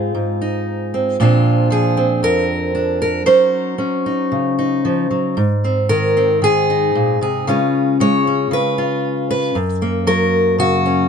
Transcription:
0.00 0.13 G#2 medium
0.00 1.16 G#3 soft
0.00 0.93 C4 soft
0.00 0.40 D#4 soft
0.00 1.18 F4 medium
0.15 1.16 G#2 soft
0.42 1.16 D#4 soft
0.94 1.16 C4 soft
1.20 2.23 A#2 medium
1.20 1.69 F3 soft
1.20 1.96 C4 soft
1.20 2.74 D4 soft
1.20 1.72 F4 soft
1.70 3.23 F3 medium
1.70 2.23 G#4 medium
1.97 3.24 C4 soft
2.23 3.27 F2 medium
2.23 3.00 A#4 medium
2.75 3.24 D4 soft
3.02 3.26 A#4 medium
3.26 4.84 F#3 medium
3.26 3.77 C#4 soft
3.26 4.06 D#4 soft
3.26 5.37 C5 medium
3.78 5.34 C#4 medium
4.06 4.57 D#4 soft
4.32 5.34 C#3 soft
4.59 5.34 D#4 soft
4.85 5.10 F3 medium
5.11 5.37 F#3 soft
5.37 7.45 G#2 medium
5.64 6.16 C4 soft
5.89 6.41 D#3 medium
5.89 6.43 A#4 medium
6.17 7.45 C4 soft
6.42 6.95 D#3 medium
6.42 7.21 G#4 medium
6.70 7.45 D#4 soft
6.95 7.21 A#2 medium
7.21 7.48 C3 soft
7.21 7.48 G#4 medium
7.47 8.50 C#3 medium
7.47 7.99 G#3 soft
7.47 8.27 C#4 soft
7.47 8.77 F4 soft
7.47 8.01 B4 soft
8.00 9.53 G#3 medium
8.00 8.53 C#5 medium
8.27 9.53 C#4 soft
8.51 9.52 C#3 medium
8.51 9.29 B4 medium
8.78 9.53 F4 soft
9.31 9.56 B4 medium
9.55 11.09 F#2 medium
9.82 11.09 A#3 soft
10.07 11.09 F#3 medium
10.07 10.59 A#4 medium
10.58 11.09 C#3 medium
10.58 11.09 F#4 medium
10.86 11.09 C#4 soft

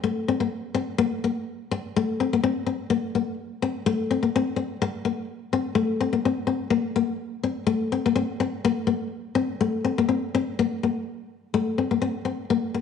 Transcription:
0.04 0.22 A3 medium
0.28 0.38 C4 medium
0.40 0.49 A#3 medium
0.75 0.94 C4 medium
0.98 1.18 A#3 loud
1.24 1.42 A#3 medium
1.71 muted nylon-string guitar stroke medium
1.96 2.15 A3 medium
2.20 2.30 C4 medium
2.33 2.41 A#3 medium
2.44 2.62 C4 medium
2.66 2.85 C4 medium
2.90 3.09 A#3 medium
3.15 3.34 A#3 medium
3.62 3.81 C4 medium
3.86 4.05 A3 loud
4.11 4.21 C4 medium
4.23 4.32 A#3 medium
4.36 4.54 C4 medium
4.56 4.76 C4 medium
4.82 muted nylon-string guitar stroke medium
5.05 5.24 A#3 medium
5.53 5.72 C4 medium
5.75 5.95 A3 medium
6.01 6.11 C4 medium
6.13 6.22 A#3 medium
6.25 6.44 C4 medium
6.47 6.67 C4 medium
6.70 6.91 A#3 medium
6.96 7.15 A#3 medium
7.43 7.63 C4 medium
7.67 7.87 A3 medium
7.92 8.03 C4 medium
8.06 8.15 A#3 medium
8.16 8.35 C4 medium
8.40 8.60 C4 medium
8.65 8.84 A#3 loud
8.87 9.07 A#3 medium
9.35 9.55 C4 medium
9.61 9.80 A3 loud
9.85 9.95 C4 medium
9.98 10.07 A#3 medium
10.09 10.28 C4 medium
10.35 10.53 C4 medium
10.59 10.77 A#3 medium
10.83 11.02 A#3 medium
11.54 11.73 A3 medium
11.78 11.88 C4 medium
11.91 11.99 A#3 medium
12.02 12.21 C4 medium
12.25 12.44 C4 medium
12.50 12.69 A#3 medium
12.74 12.81 A#3 medium

